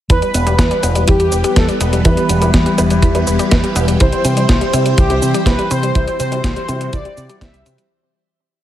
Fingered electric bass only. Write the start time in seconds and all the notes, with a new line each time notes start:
0.10 E2
0.34 E1
0.59 E2
0.83 E1
1.09 E2
1.32 E1
1.56 E2
1.81 E1
2.05 E2
2.29 E1
2.54 E2
2.78 E1
3.02 E2
3.27 E1
3.52 E2
3.76 E1
4.01 C2
4.25 C3
4.49 C2
4.73 C3
4.98 C2
5.22 C3
5.46 C2
5.71 C3
5.95 C2
6.20 C3
6.44 C2
6.69 C3
6.93 C2
7.17 C3
7.41 C2
7.66 C3